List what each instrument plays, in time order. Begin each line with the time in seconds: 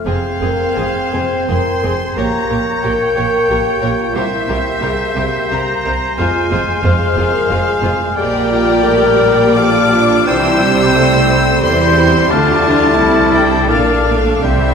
0.06 double bass section F1, cello section F2, viola section C4 G#4, bassoon C4, french horn section G#4, violin section G#4 C5 F5, oboe C5, flute G#6
0.41 double bass section F1, cello section F2, viola section C4 G#4, violin section G#4 C5, french horn section A#4
0.76 double bass section F1, cello section F2, viola section C4 G#4, violin section G#4 C5, french horn section G#4
1.12 double bass section F1, cello section F2, viola section C4 G#4, violin section G#4 C5, french horn section C5
1.48 double bass section F1, cello section F2, viola section C4 G#4, violin section G#4 C5 C6, french horn section A#4
1.83 double bass section F1, cello section F2, viola section C4 G#4, violin section G#4 C5, french horn section G#4
2.16 double bass section A#1, cello section A#2, viola section A#3 G4, bassoon A#3, french horn section G4, violin section A#4 C#5 A#5, oboe C#5, flute G6
2.49 double bass section A#1, cello section A#2, viola section A#3 G4, violin section A#4 C#5
2.83 double bass section A#1, cello section A#2, viola section A#3 G4, violin section A#4 C#5 G5, french horn section A#4
3.16 double bass section A#1, cello section A#2, viola section A#3 G4, violin section A#4 C#5, french horn section A#4
3.49 double bass section A#1, cello section A#2, viola section A#3 G4, french horn section G4, violin section A#4 C#5
3.82 double bass section A#1, cello section A#2, viola section A#3 G4, french horn section F4, violin section A#4 C#5
4.14 double bass section C2, cello section C3, viola section G3 G4, french horn section E4, violin section A#4 C5 E5, oboe C5
4.48 double bass section C2, cello section C3, viola section G3 G4, french horn section G4, violin section A#4 C5
4.81 double bass section C2, cello section C3, viola section G3 G4, french horn section G#4, violin section A#4 C5
5.15 double bass section C2, cello section C3, viola section G3 G4, french horn section G4, violin section A#4 C5
5.51 double bass section C2, cello section C3, viola section G3 G4, violin section A#4 C5 A#5
5.85 double bass section C2, cello section C3, viola section G3 G4, violin section A#4 C5
6.18 double bass section F1, cello section F2, viola section G#3 F4, bassoon G#3, french horn section F4, violin section G#4 C5 G#5, flute F6
6.50 double bass section F1, cello section F2, viola section G#3 F4, violin section G#4 C5, french horn section G#4
6.83 double bass section F1, cello section F2, viola section G#3 F4, violin section G#4 C5 F5, french horn section C5
7.16 double bass section F1, cello section F2, viola section G#3 F4, violin section G#4 C5, french horn section A#4
7.50 double bass section F1, cello section F2, viola section G#3 F4, french horn section G#4, violin section G#4 C5
7.83 double bass section F1, cello section F2, viola section G#3 F4, violin section G#4 C5
8.15 double bass section A#1, cello section A#2, bassoon G3, viola section A#3 G4, french horn section G4, violin section A#4 D5 G5, oboe D5, flute F6
8.50 french horn section F4, violin section D5
8.82 viola section A3, french horn section A#4
9.19 viola section G3
9.55 viola section F3 F4, bassoon G3, french horn section G4, violin section A4 D6, oboe D5, flute F6
9.91 viola section D4, french horn section F4
10.26 double bass section C2, cello section C3, viola section E3, bassoon G3, french horn section E4, violin section G4 C5 E6, oboe C5, flute G6
10.61 viola section G3, french horn section G4
10.95 viola section A3 C4, violin section E4 C5
11.30 violin section C5
11.62 double bass section E2, cello section E3, bassoon G3, viola section G3 C4, violin section E4 C6, french horn section A4, oboe C5, flute G6
11.97 french horn section G4
12.29 double bass section D2, cello section D3, bassoon A3, viola section D4, french horn section F4, violin section F4 A4 A5, oboe D5, flute F6
12.62 french horn section E4, violin section F4
12.97 double bass section C2, cello section C3, viola section E4, violin section E4 A4
13.34 violin section D4 G5
13.68 double bass section A#1, cello section A#2, viola section A#3 D4, bassoon A#3, french horn section D4, violin section D4 F5, oboe D5, flute F6
14.05 viola section A3, french horn section A4
14.42 double bass section C2, timpani C3, cello section C3, bassoon G3, viola section G3 C4, violin section E4 G4 E5, french horn section G4, oboe C5, flute G6
14.50 timpani C3
14.58 timpani C3
14.65 timpani C3